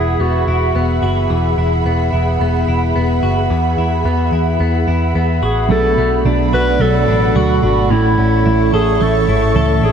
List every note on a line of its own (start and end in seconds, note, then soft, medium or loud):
0.00 0.16 E1 medium
0.00 1.29 E3 medium
0.00 0.20 B3 medium
0.00 0.47 E4 medium
0.00 1.02 F#4 medium
0.00 0.23 G#4 loud
0.00 5.66 G#4 medium
0.00 5.66 E5 medium
0.00 5.66 F#5 medium
0.00 5.66 B5 medium
0.19 0.44 E1 medium
0.19 0.75 B3 medium
0.19 1.03 F#4 medium
0.47 0.71 E1 medium
0.47 1.57 E4 medium
0.75 0.99 E1 medium
0.75 1.86 B3 medium
1.02 1.26 F#1 medium
1.02 3.23 F#4 medium
1.30 1.54 E1 medium
1.30 3.49 E3 medium
1.57 1.81 E1 medium
1.57 2.11 E4 medium
1.85 2.09 E1 medium
1.85 2.41 B3 medium
2.13 2.37 E1 medium
2.13 2.67 E4 medium
2.40 2.64 E1 medium
2.40 2.95 B3 medium
2.68 2.92 E1 medium
2.68 3.77 E4 soft
2.96 3.20 E1 medium
2.96 4.05 B3 medium
3.23 3.47 F#1 medium
3.23 5.42 F#4 medium
3.50 3.75 E2 loud
3.50 5.70 E3 medium
3.78 4.02 E2 medium
3.78 4.32 E4 medium
4.05 4.29 E2 medium
4.05 4.60 B3 medium
4.32 4.57 E2 medium
4.32 4.87 E4 medium
4.60 4.84 E2 medium
4.60 5.15 B3 medium
4.88 5.12 E2 medium
4.88 5.76 E4 medium
5.15 5.39 E2 medium
5.15 5.98 B3 medium
5.42 5.67 A1 medium
5.42 6.53 F#4 medium
5.42 5.69 G#4 medium
5.69 5.94 B1 loud
5.69 5.97 B2 medium
5.69 7.91 B2 medium
5.69 5.97 F#3 medium
5.69 5.97 A3 medium
5.69 5.97 D4 loud
5.69 5.95 F#4 loud
5.69 9.92 A4 medium
5.69 6.22 A4 loud
5.69 7.88 D5 medium
5.69 7.88 F#5 medium
5.69 7.88 B5 loud
5.96 6.22 B1 loud
5.96 8.17 A3 medium
5.96 6.25 F#4 medium
6.24 6.49 B1 loud
6.24 6.52 B2 medium
6.24 6.53 F#3 medium
6.24 6.53 A3 medium
6.24 7.07 D4 medium
6.24 6.53 D4 medium
6.24 6.51 F#4 medium
6.52 6.77 B1 loud
6.52 6.81 D4 medium
6.52 6.80 F#4 medium
6.52 7.34 F#4 medium
6.52 6.83 B4 loud
6.79 7.04 B1 loud
6.79 7.07 F#3 medium
6.79 7.96 F#3 medium
6.79 7.08 A3 medium
6.79 7.08 D4 medium
6.79 7.06 F#4 medium
6.79 7.38 A4 loud
7.07 7.32 A1 medium
7.07 7.35 A3 medium
7.07 7.62 D4 medium
7.07 7.36 D4 medium
7.07 7.35 F#4 medium
7.35 7.59 D2 medium
7.35 7.63 B2 medium
7.35 7.63 F#3 medium
7.35 7.63 A3 medium
7.35 7.63 D4 medium
7.35 7.96 F#4 medium
7.35 7.63 F#4 loud
7.35 7.61 F#4 medium
7.62 7.87 G#1 loud
7.62 7.90 A3 soft
7.62 7.96 D4 medium
7.62 7.91 D4 medium
7.62 7.90 F#4 soft
7.62 7.92 F#4 loud
7.90 8.14 A1 loud
7.90 8.18 A2 medium
7.90 9.92 A2 loud
7.90 8.18 E3 medium
7.90 8.18 A3 loud
7.90 8.18 C#4 medium
7.90 8.73 E4 loud
7.90 8.16 E4 loud
7.90 9.92 C#5 medium
7.90 9.92 E5 medium
7.90 9.92 C#6 loud
8.17 8.43 A1 loud
8.17 8.45 A3 soft
8.17 9.92 C#4 medium
8.17 8.46 C#4 medium
8.17 8.45 E4 medium
8.45 8.70 A1 loud
8.45 8.73 A2 medium
8.45 8.73 E3 medium
8.45 8.74 A3 medium
8.45 8.73 C#4 medium
8.45 9.27 E4 medium
8.45 8.71 E4 medium
8.72 8.97 A1 loud
8.72 9.00 A3 soft
8.72 9.00 E4 medium
8.72 9.04 G#4 loud
8.72 9.55 A4 medium
9.00 9.25 A1 loud
9.00 9.28 E3 medium
9.00 9.92 A3 medium
9.00 9.28 A3 medium
9.00 9.28 C#4 medium
9.00 9.87 A4 loud
9.04 9.26 E4 medium
9.27 9.52 G#1 medium
9.27 9.55 A3 soft
9.27 9.56 C#4 medium
9.27 9.55 E4 medium
9.27 9.83 E4 medium
9.55 9.79 C#2 medium
9.55 9.83 A2 medium
9.55 9.83 E3 medium
9.55 9.83 A3 medium
9.55 9.83 C#4 medium
9.55 9.81 E4 medium
9.55 9.92 A4 medium
9.82 9.92 A1 medium
9.82 9.92 A3 soft
9.82 9.92 D4 medium
9.82 9.92 E4 medium
9.82 9.92 G#4 loud